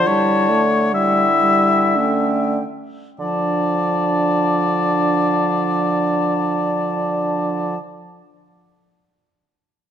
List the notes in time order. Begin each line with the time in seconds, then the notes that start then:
Already playing: D3
0.07 G3 E4 C#5 A5
0.49 A3
0.93 G3 E4 E5 G5
1.42 G3
1.96 A3 C#4 G5
3.19 D3 F3 D4 D5 A5